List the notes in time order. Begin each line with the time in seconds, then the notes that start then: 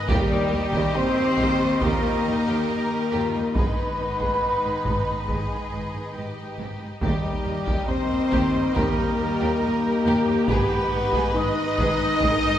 0.08 D#2 D#3 G3 A#3 D#4 G4 A#4 D#5 G5, taiko
0.29 D#2 D#4
0.51 D#2 A#3 G4
0.71 D#2 G4, taiko
0.93 D#2 C4 D#4 C5 C6
1.14 A#3
1.19 D#2
1.36 D#2 G4, taiko
1.58 D#2 D#4
1.80 D#2 A#3 F4 G4 A#4 A#5, taiko
2.03 D#2 D#4
2.25 D#2 A#3 D#4
2.47 D#2 G4
2.68 D#2 D#4 G4
3.11 D#2 F4 G4
3.32 D#2 D#4
3.54 G#1 G#2 D#3 G#3 B3 D#4 G#4 B4 D#5 B5, taiko
3.76 G#2 D#4
3.98 G#1 G#2 B3
4.19 G#2 G#4, taiko
4.42 G#1 G#2 D#4
4.64 G#2
4.85 G#1 G#2, taiko
5.08 G#2
5.28 G#1 G#2 G#4, taiko
5.50 G#2
5.72 G#1 G#2
5.94 G#2
6.15 G#1 G#2 G4
6.59 G#1 G#2
6.81 G#2
7.01 D#2 D#3 G3 D#4 G4 A#4 D#5 G5, taiko
7.22 D#2 D#4
7.43 D#2 A#3
7.64 D#2 G4, taiko
7.85 D#2 C4 D#4 C5 C6
7.89 D#2
8.08 D#2 A#3
8.31 D#2 G4, taiko
8.51 D#2 D#4
8.74 D#2 A#3 G4 A#4 A#5, taiko
8.96 D#2 D#4
9.18 D#2 A#3
9.40 D#2 G4
9.62 D#2 D#4 G4
10.05 D#2 G4
10.27 D#2 D#4
10.47 G#1 G#2 D#3 G#3 B3 D#4 G#4 B4 D#5 B5, taiko
10.70 G#2 D#4
10.91 G#1 G#2 B3
11.13 G#2 G#4, taiko
11.34 G#1 G#2 D#4 B4 D#5 D#6
11.57 G#2 B3
11.78 G#1 G#2 G#4, taiko
12.00 G#2 D#4
12.21 G#1 G#2 G#4 A#4, taiko
12.43 G#2 D#4